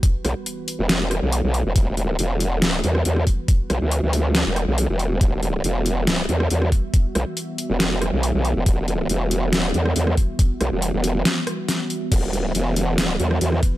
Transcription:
0.00 13.78 E3 medium
0.00 13.78 G3 medium
0.00 13.78 B3 medium
0.00 13.78 F#4 medium
0.00 5.19 B4 medium
0.00 kick loud
0.00 closed hi-hat medium
0.25 0.34 B1 medium
0.25 cross-stick medium
0.25 closed hi-hat medium
0.46 closed hi-hat medium
0.68 open hi-hat medium
0.79 1.20 E1 loud
0.89 snare loud
0.89 closed hi-hat medium
1.11 cross-stick medium
1.11 closed hi-hat medium
1.22 1.42 B1 loud
1.32 closed hi-hat medium
1.44 1.64 B1 loud
1.54 closed hi-hat medium
1.65 1.74 E1 loud
1.76 2.17 E1 loud
1.76 kick loud
1.76 closed hi-hat medium
1.97 closed hi-hat medium
2.19 2.82 E1 loud
2.19 closed hi-hat medium
2.40 open hi-hat medium
2.62 snare loud
2.62 closed hi-hat medium
2.84 3.04 E2 medium
2.84 closed hi-hat medium
2.95 cross-stick medium
3.05 3.25 E2 loud
3.05 closed hi-hat medium
3.16 cross-stick medium
3.27 kick medium
3.27 closed hi-hat medium
3.48 kick loud
3.48 closed hi-hat medium
3.70 3.79 B1 loud
3.70 cross-stick medium
3.70 closed hi-hat medium
3.81 4.01 D2 medium
3.91 closed hi-hat medium
4.03 4.44 D2 loud
4.13 open hi-hat medium
4.35 snare loud
4.35 closed hi-hat medium
4.46 4.66 E1 loud
4.56 cross-stick medium
4.56 closed hi-hat soft
4.67 4.87 B1 loud
4.78 closed hi-hat medium
4.89 5.19 E1 loud
4.99 closed hi-hat medium
5.21 5.63 E1 loud
5.21 12.10 E5 medium
5.21 kick loud
5.21 closed hi-hat medium
5.43 closed hi-hat medium
5.64 6.27 E1 loud
5.64 closed hi-hat medium
5.86 open hi-hat medium
6.07 snare loud
6.07 closed hi-hat medium
6.29 6.49 E2 loud
6.29 closed hi-hat soft
6.40 cross-stick medium
6.50 6.70 E2 loud
6.50 closed hi-hat medium
6.62 cross-stick medium
6.72 kick medium
6.72 closed hi-hat soft
6.94 kick loud
6.94 closed hi-hat medium
7.15 7.25 B1 medium
7.15 cross-stick medium
7.15 closed hi-hat medium
7.37 closed hi-hat medium
7.58 open hi-hat loud
7.70 8.11 E1 loud
7.80 snare loud
7.80 closed hi-hat medium
8.02 cross-stick medium
8.02 closed hi-hat soft
8.13 8.33 B1 loud
8.23 closed hi-hat medium
8.34 8.54 B1 loud
8.45 closed hi-hat soft
8.56 8.65 E1 loud
8.66 9.08 E1 loud
8.66 kick loud
8.66 closed hi-hat medium
8.88 closed hi-hat medium
9.09 9.54 E1 loud
9.09 closed hi-hat medium
9.31 open hi-hat loud
9.53 9.73 D#1 loud
9.53 snare loud
9.53 closed hi-hat medium
9.74 9.94 E2 loud
9.74 closed hi-hat soft
9.86 cross-stick medium
9.96 10.16 E2 medium
9.96 closed hi-hat medium
10.07 cross-stick medium
10.17 kick medium
10.17 closed hi-hat medium
10.39 kick loud
10.39 closed hi-hat medium
10.61 10.70 B1 loud
10.61 cross-stick medium
10.61 closed hi-hat medium
10.72 10.92 E1 loud
10.82 closed hi-hat medium
10.93 11.24 E1 loud
11.04 open hi-hat loud
11.25 snare loud
11.25 closed hi-hat medium
11.47 cross-stick medium
11.47 closed hi-hat medium
11.69 snare medium
11.69 closed hi-hat medium
11.90 closed hi-hat medium
12.12 12.53 E1 loud
12.12 13.78 B4 medium
12.12 kick loud
12.12 closed hi-hat medium
12.12 crash medium
12.12 ride medium
12.33 closed hi-hat medium
12.55 13.18 E1 loud
12.55 closed hi-hat medium
12.55 ride soft
12.76 open hi-hat loud
12.98 snare loud
12.98 closed hi-hat medium
12.98 ride medium
13.20 13.40 E2 loud
13.20 closed hi-hat medium
13.31 cross-stick medium
13.41 13.61 E2 medium
13.41 closed hi-hat medium
13.41 ride soft
13.52 cross-stick medium
13.63 kick medium
13.63 closed hi-hat medium

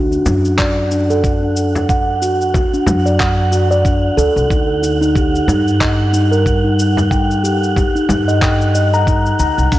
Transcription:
0.00 0.17 D2 medium
0.00 9.79 F#5 medium
0.12 0.24 D4 medium
0.12 shaker soft
0.26 2.61 F#2 loud
0.26 frame drum medium
0.26 shaker medium
0.45 shaker soft
0.59 0.77 D5 medium
0.59 kick loud
0.59 clap medium
0.59 shaker soft
0.91 1.08 D4 medium
0.91 shaker medium
1.10 1.41 A4 medium
1.10 shaker soft
1.24 kick loud
1.24 shaker soft
1.43 1.88 D4 medium
1.56 shaker medium
1.75 frame drum medium
1.75 shaker soft
1.89 2.07 F#5 medium
1.89 kick loud
1.89 shaker soft
2.22 2.40 F#4 medium
2.22 shaker medium
2.41 shaker soft
2.54 2.71 F#4 medium
2.54 kick loud
2.54 frame drum medium
2.54 shaker soft
2.74 3.04 D4 medium
2.74 shaker soft
2.87 4.08 F#2 medium
2.87 frame drum loud
2.87 shaker medium
3.06 3.19 D5 medium
3.06 shaker soft
3.20 3.37 F#5 medium
3.20 kick medium
3.20 clap medium
3.20 shaker soft
3.52 3.70 F#4 medium
3.52 shaker medium
3.71 3.84 D5 medium
3.71 shaker soft
3.85 3.96 D4 medium
3.85 kick loud
3.85 shaker soft
4.17 4.29 D2 loud
4.17 4.35 A4 loud
4.17 shaker medium
4.36 4.44 C2 medium
4.36 shaker soft
4.50 5.39 D2 medium
4.50 4.68 D#4 medium
4.50 kick loud
4.50 shaker soft
4.83 5.00 D#4 medium
4.83 shaker medium
5.01 5.14 D#4 medium
5.01 shaker soft
5.15 5.26 G4 medium
5.15 kick loud
5.15 shaker soft
5.34 5.46 D#4 medium
5.34 shaker soft
5.48 7.83 G2 loud
5.48 5.79 D#4 medium
5.48 frame drum loud
5.48 shaker medium
5.68 shaker soft
5.81 5.98 D#5 medium
5.81 kick loud
5.81 clap medium
5.81 shaker soft
6.13 6.30 D#4 medium
6.13 shaker medium
6.32 6.62 A#4 medium
6.32 shaker soft
6.46 kick loud
6.46 shaker soft
6.64 7.09 D#4 medium
6.79 shaker medium
6.97 frame drum medium
6.97 shaker soft
7.11 7.29 G5 medium
7.11 kick loud
7.11 shaker soft
7.31 shaker soft
7.44 7.61 G4 medium
7.44 shaker medium
7.63 shaker soft
7.76 7.93 G4 medium
7.76 kick loud
7.76 frame drum medium
7.76 shaker soft
7.95 8.26 D#4 medium
7.95 shaker soft
8.09 9.31 G2 loud
8.09 frame drum medium
8.09 shaker medium
8.28 8.41 D#5 medium
8.28 shaker soft
8.42 8.60 G5 medium
8.42 kick loud
8.42 clap medium
8.42 shaker soft
8.61 shaker soft
8.75 8.91 D#5 medium
8.75 shaker medium
8.93 9.06 A#5 loud
8.93 shaker soft
9.07 9.18 D#4 medium
9.07 kick loud
9.07 shaker soft
9.26 shaker soft
9.39 9.51 D2 medium
9.39 9.56 A#5 medium
9.39 shaker medium
9.58 9.66 C2 medium
9.58 shaker soft
9.72 9.79 D2 medium
9.72 9.79 D4 medium
9.72 kick loud
9.72 open hi-hat soft
9.72 shaker soft

